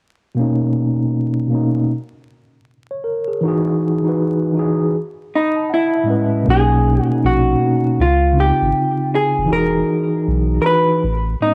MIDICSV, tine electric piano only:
0, 0, Header, 1, 2, 480
1, 0, Start_track
1, 0, Key_signature, 5, "major"
1, 0, Tempo, 759494
1, 243, Time_signature, 4, 2, 24, 8
1, 7293, End_track
2, 0, Start_track
2, 0, Title_t, "Tine electric piano"
2, 0, Program_c, 0, 4
2, 220, Note_on_c, 0, 47, 93
2, 233, Note_on_c, 0, 58, 86
2, 249, Note_on_c, 0, 61, 88
2, 263, Note_on_c, 0, 63, 91
2, 369, Control_c, 0, 64, 127
2, 821, Note_off_c, 0, 47, 0
2, 828, Note_off_c, 0, 58, 0
2, 836, Note_off_c, 0, 61, 0
2, 843, Note_off_c, 0, 63, 0
2, 934, Note_on_c, 0, 47, 78
2, 949, Note_on_c, 0, 58, 66
2, 964, Note_on_c, 0, 61, 65
2, 978, Note_on_c, 0, 63, 83
2, 1189, Note_off_c, 0, 47, 0
2, 1196, Note_off_c, 0, 58, 0
2, 1204, Note_off_c, 0, 61, 0
2, 1211, Note_off_c, 0, 63, 0
2, 1212, Control_c, 0, 64, 0
2, 1334, Control_c, 0, 64, 127
2, 1839, Note_on_c, 0, 73, 61
2, 1921, Note_off_c, 0, 73, 0
2, 1922, Note_on_c, 0, 70, 65
2, 2067, Note_off_c, 0, 70, 0
2, 2071, Note_on_c, 0, 68, 60
2, 2154, Note_on_c, 0, 52, 100
2, 2168, Note_on_c, 0, 63, 93
2, 2170, Control_c, 0, 64, 0
2, 2181, Note_on_c, 0, 66, 99
2, 2191, Note_off_c, 0, 68, 0
2, 2198, Note_on_c, 0, 68, 108
2, 2267, Control_c, 0, 64, 127
2, 2453, Note_off_c, 0, 52, 0
2, 2461, Note_off_c, 0, 63, 0
2, 2467, Note_off_c, 0, 66, 0
2, 2476, Note_off_c, 0, 68, 0
2, 2539, Note_on_c, 0, 52, 66
2, 2553, Note_on_c, 0, 63, 61
2, 2568, Note_on_c, 0, 66, 64
2, 2582, Note_on_c, 0, 71, 71
2, 2819, Note_off_c, 0, 52, 0
2, 2826, Note_off_c, 0, 63, 0
2, 2833, Note_off_c, 0, 66, 0
2, 2841, Note_off_c, 0, 71, 0
2, 2858, Note_on_c, 0, 52, 73
2, 2872, Note_on_c, 0, 63, 76
2, 2887, Note_on_c, 0, 66, 66
2, 2901, Note_on_c, 0, 68, 97
2, 3111, Note_off_c, 0, 52, 0
2, 3118, Note_off_c, 0, 63, 0
2, 3125, Note_off_c, 0, 66, 0
2, 3132, Note_off_c, 0, 68, 0
2, 3133, Control_c, 0, 64, 0
2, 3242, Control_c, 0, 64, 127
2, 3389, Note_on_c, 0, 83, 67
2, 3515, Note_on_c, 0, 81, 63
2, 3519, Note_off_c, 0, 83, 0
2, 3597, Note_off_c, 0, 81, 0
2, 3601, Note_on_c, 0, 78, 64
2, 3744, Note_off_c, 0, 78, 0
2, 3762, Note_on_c, 0, 76, 67
2, 3813, Note_on_c, 0, 45, 77
2, 3828, Note_on_c, 0, 56, 76
2, 3835, Note_on_c, 0, 75, 68
2, 3840, Note_off_c, 0, 76, 0
2, 3841, Note_on_c, 0, 61, 71
2, 3856, Note_on_c, 0, 71, 83
2, 4031, Note_off_c, 0, 45, 0
2, 4038, Note_off_c, 0, 56, 0
2, 4045, Note_off_c, 0, 61, 0
2, 4053, Note_off_c, 0, 71, 0
2, 4062, Note_off_c, 0, 75, 0
2, 4065, Note_on_c, 0, 47, 93
2, 4079, Note_on_c, 0, 58, 91
2, 4091, Control_c, 0, 64, 0
2, 4094, Note_on_c, 0, 61, 78
2, 4110, Note_on_c, 0, 63, 87
2, 4194, Control_c, 0, 64, 127
2, 4369, Note_off_c, 0, 47, 0
2, 4376, Note_off_c, 0, 58, 0
2, 4383, Note_off_c, 0, 61, 0
2, 4391, Note_off_c, 0, 63, 0
2, 4470, Note_on_c, 0, 47, 58
2, 4486, Note_on_c, 0, 58, 53
2, 4501, Note_on_c, 0, 61, 54
2, 4515, Note_on_c, 0, 63, 69
2, 4745, Note_off_c, 0, 47, 0
2, 4753, Note_off_c, 0, 58, 0
2, 4760, Note_off_c, 0, 61, 0
2, 4767, Note_off_c, 0, 63, 0
2, 4788, Note_on_c, 0, 47, 73
2, 4803, Note_on_c, 0, 58, 67
2, 4818, Note_on_c, 0, 61, 62
2, 4831, Note_on_c, 0, 63, 69
2, 5036, Note_off_c, 0, 47, 0
2, 5043, Note_off_c, 0, 58, 0
2, 5051, Note_off_c, 0, 61, 0
2, 5052, Control_c, 0, 64, 0
2, 5057, Note_off_c, 0, 63, 0
2, 5179, Control_c, 0, 64, 127
2, 5261, Note_on_c, 0, 49, 67
2, 5275, Note_on_c, 0, 60, 63
2, 5290, Note_on_c, 0, 63, 63
2, 5305, Note_on_c, 0, 65, 77
2, 5862, Note_off_c, 0, 49, 0
2, 5869, Note_off_c, 0, 60, 0
2, 5877, Note_off_c, 0, 63, 0
2, 5884, Note_off_c, 0, 65, 0
2, 5975, Note_on_c, 0, 52, 83
2, 5991, Note_on_c, 0, 63, 87
2, 6004, Note_on_c, 0, 66, 72
2, 6012, Control_c, 0, 64, 0
2, 6018, Note_on_c, 0, 68, 104
2, 6130, Control_c, 0, 64, 127
2, 6579, Note_off_c, 0, 52, 0
2, 6587, Note_off_c, 0, 63, 0
2, 6593, Note_off_c, 0, 66, 0
2, 6601, Note_off_c, 0, 68, 0
2, 6709, Note_on_c, 0, 52, 68
2, 6725, Note_on_c, 0, 63, 57
2, 6741, Note_on_c, 0, 66, 67
2, 6754, Note_on_c, 0, 71, 77
2, 6956, Note_off_c, 0, 52, 0
2, 6964, Note_off_c, 0, 63, 0
2, 6971, Control_c, 0, 64, 0
2, 6972, Note_off_c, 0, 66, 0
2, 6979, Note_off_c, 0, 71, 0
2, 7080, Control_c, 0, 64, 127
2, 7207, Note_on_c, 0, 45, 62
2, 7222, Note_on_c, 0, 56, 64
2, 7236, Note_on_c, 0, 59, 64
2, 7252, Note_on_c, 0, 61, 76
2, 7293, Note_off_c, 0, 45, 0
2, 7293, Note_off_c, 0, 56, 0
2, 7293, Note_off_c, 0, 59, 0
2, 7293, Note_off_c, 0, 61, 0
2, 7293, End_track
0, 0, End_of_file